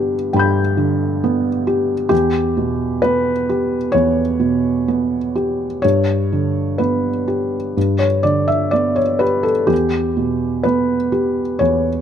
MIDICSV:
0, 0, Header, 1, 2, 480
1, 0, Start_track
1, 0, Tempo, 891530
1, 1138, Time_signature, 4, 2, 24, 8
1, 1139, Tempo, 918836
1, 2579, Tempo, 967742
1, 4979, Tempo, 950872
1, 6141, End_track
2, 0, Start_track
2, 0, Title_t, "Felt piano"
2, 0, Program_c, 0, 0
2, 0, Control_c, 0, 64, 127
2, 0, Note_on_c, 0, 43, 42
2, 0, Note_on_c, 0, 50, 33
2, 0, Note_on_c, 0, 59, 35
2, 0, Note_on_c, 0, 67, 37
2, 0, Note_on_c, 0, 71, 66
2, 83, Note_off_c, 0, 59, 0
2, 157, Note_off_c, 0, 43, 0
2, 179, Note_on_c, 0, 79, 31
2, 183, Note_on_c, 0, 43, 37
2, 196, Note_on_c, 0, 83, 31
2, 212, Note_on_c, 0, 91, 32
2, 329, Note_off_c, 0, 67, 0
2, 416, Note_off_c, 0, 50, 0
2, 416, Note_on_c, 0, 50, 38
2, 666, Note_on_c, 0, 59, 40
2, 800, Note_off_c, 0, 50, 0
2, 900, Note_on_c, 0, 67, 39
2, 1045, Note_off_c, 0, 59, 0
2, 1116, Note_off_c, 0, 79, 0
2, 1118, Note_off_c, 0, 43, 0
2, 1118, Note_off_c, 0, 67, 0
2, 1125, Note_off_c, 0, 83, 0
2, 1126, Note_on_c, 0, 67, 66
2, 1133, Note_off_c, 0, 71, 0
2, 1133, Note_off_c, 0, 91, 0
2, 1134, Note_on_c, 0, 40, 47
2, 1147, Control_c, 0, 64, 0
2, 1227, Control_c, 0, 64, 127
2, 1377, Note_on_c, 0, 47, 37
2, 1607, Note_off_c, 0, 67, 0
2, 1611, Note_on_c, 0, 71, 69
2, 1619, Note_on_c, 0, 59, 37
2, 1757, Note_off_c, 0, 47, 0
2, 1859, Note_on_c, 0, 67, 40
2, 1996, Note_off_c, 0, 59, 0
2, 2065, Note_off_c, 0, 40, 0
2, 2081, Note_on_c, 0, 73, 73
2, 2087, Note_off_c, 0, 71, 0
2, 2093, Note_on_c, 0, 40, 40
2, 2236, Note_off_c, 0, 67, 0
2, 2331, Note_on_c, 0, 47, 35
2, 2584, Note_on_c, 0, 59, 36
2, 2720, Note_off_c, 0, 47, 0
2, 2818, Note_on_c, 0, 67, 35
2, 2962, Note_off_c, 0, 59, 0
2, 3038, Note_off_c, 0, 40, 0
2, 3042, Note_off_c, 0, 73, 0
2, 3049, Note_on_c, 0, 73, 68
2, 3057, Note_off_c, 0, 67, 0
2, 3062, Note_on_c, 0, 43, 42
2, 3064, Control_c, 0, 64, 0
2, 3148, Control_c, 0, 64, 127
2, 3300, Note_on_c, 0, 50, 30
2, 3527, Note_on_c, 0, 71, 51
2, 3529, Note_off_c, 0, 73, 0
2, 3533, Note_on_c, 0, 59, 33
2, 3677, Note_off_c, 0, 50, 0
2, 3772, Note_on_c, 0, 67, 32
2, 3915, Note_off_c, 0, 59, 0
2, 3994, Note_off_c, 0, 43, 0
2, 4016, Note_on_c, 0, 43, 33
2, 4021, Control_c, 0, 64, 0
2, 4109, Control_c, 0, 64, 127
2, 4124, Note_on_c, 0, 73, 50
2, 4128, Note_off_c, 0, 71, 0
2, 4156, Note_off_c, 0, 67, 0
2, 4245, Note_on_c, 0, 74, 60
2, 4248, Note_off_c, 0, 73, 0
2, 4251, Note_on_c, 0, 50, 30
2, 4367, Note_on_c, 0, 76, 56
2, 4369, Note_off_c, 0, 74, 0
2, 4483, Note_on_c, 0, 74, 64
2, 4490, Note_off_c, 0, 76, 0
2, 4493, Note_on_c, 0, 59, 30
2, 4605, Note_on_c, 0, 73, 54
2, 4609, Note_off_c, 0, 74, 0
2, 4638, Note_off_c, 0, 50, 0
2, 4721, Note_on_c, 0, 71, 56
2, 4729, Note_on_c, 0, 67, 32
2, 4731, Note_off_c, 0, 73, 0
2, 4841, Note_on_c, 0, 69, 50
2, 4850, Note_off_c, 0, 71, 0
2, 4881, Note_off_c, 0, 59, 0
2, 4951, Note_off_c, 0, 67, 0
2, 4958, Note_on_c, 0, 67, 58
2, 4960, Note_off_c, 0, 43, 0
2, 4964, Note_on_c, 0, 40, 42
2, 4969, Note_off_c, 0, 69, 0
2, 4987, Control_c, 0, 64, 0
2, 5061, Control_c, 0, 64, 127
2, 5210, Note_on_c, 0, 47, 29
2, 5445, Note_on_c, 0, 71, 60
2, 5451, Note_off_c, 0, 67, 0
2, 5454, Note_on_c, 0, 59, 33
2, 5599, Note_off_c, 0, 47, 0
2, 5691, Note_on_c, 0, 67, 36
2, 5839, Note_off_c, 0, 59, 0
2, 5911, Note_off_c, 0, 40, 0
2, 5928, Note_on_c, 0, 73, 64
2, 5930, Note_off_c, 0, 71, 0
2, 5934, Note_on_c, 0, 40, 37
2, 6076, Note_off_c, 0, 67, 0
2, 6141, Note_off_c, 0, 40, 0
2, 6141, Note_off_c, 0, 73, 0
2, 6141, End_track
0, 0, End_of_file